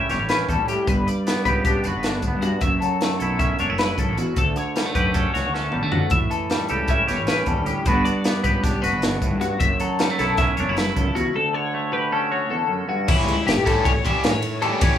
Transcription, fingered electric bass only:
0.10 G1
0.19 A1
0.49 E2
0.58 A2
0.88 G1
1.46 C#2
1.85 F#1
1.95 G1
2.23 D2
2.35 G2
2.62 F#1
3.21 B1
3.60 E1
3.69 F#1
3.98 C#2
4.08 A1
4.37 D2
4.95 F#2
5.36 C#2
5.45 D2
5.74 A1
5.83 D3
6.11 A1
6.71 C#2
7.09 G1
7.18 A1
7.47 E2
7.57 D2
7.86 G1
8.44 C#2
8.84 F#1
8.93 G1
9.22 D2
9.31 G2
9.60 F#1
10.20 B1
10.59 E1
10.68 F#1
10.96 C#2
11.07 C#2
13.09 A1
13.27 C#2
13.47 G1
13.57 A2
14.05 A1
14.25 A2
14.34 A2
14.82 A1

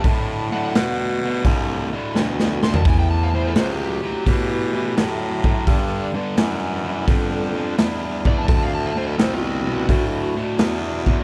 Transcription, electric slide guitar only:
Already playing: A5
0.52 F#5
2.63 C6
2.76 A5
2.90 G#5
2.99 G5
3.11 A5
3.23 F5
3.35 C5
3.47 A4
3.58 C5
3.69 G4
3.80 G4
8.27 D5
8.38 A5
8.49 A5
8.62 F5
8.75 A5
8.86 F5
8.97 C5
9.08 A4
9.20 C5
9.34 F4
9.44 F#4

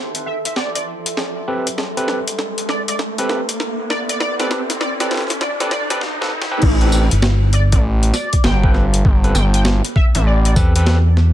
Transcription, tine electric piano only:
1.48 C4 G4 A4 B4
1.97 C4 G4 A4 B4
3.19 C4 G4 A4 B4
4.40 C4 G4 A4 B4
5.00 C4 G4 A4 B4
5.61 C4 G4 A4 B4
5.91 C4 G4 A4 B4
6.21 C4 G4 A4 B4
6.51 C4 G4 A4 B4
6.82 C4 G4 A4 B4
8.63 C4 G4 A4 B4
9.24 C4 G4 A4 B4
10.56 C4 G4 A4 B4
10.76 C4 G4 A4 B4

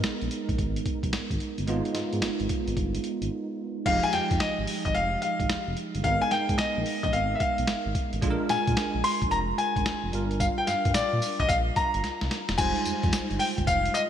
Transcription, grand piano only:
3.86 F5
4.03 G#5
4.13 G5
4.40 D#5
4.85 D#5
4.95 F5
5.22 F5
6.04 F5
6.22 G#5
6.31 G5
6.58 D#5
7.03 D#5
7.13 F5
7.35 E5
7.40 F5
8.50 G#5
9.04 C6
9.31 A#5
9.58 G#5
10.40 F5
10.58 G5
10.67 F5
10.94 D5
11.40 D#5
11.49 F5
11.76 A#5
12.58 G#5
13.39 G5
13.67 F5
13.94 D#5

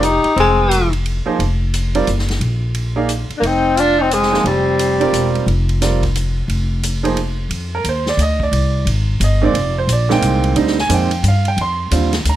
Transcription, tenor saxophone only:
0.00 D4
0.05 D#4
0.40 G#3
3.40 A#3
3.46 C4
3.80 D4
4.01 C4
4.13 G#3
4.47 G3

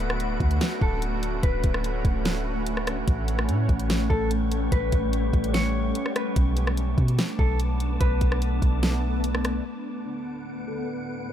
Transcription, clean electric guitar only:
0.82 A4
1.43 B4
4.10 A4
4.72 B4
5.54 C#5
6.16 B4
7.39 A4
8.00 B4
10.68 A4
11.29 B4

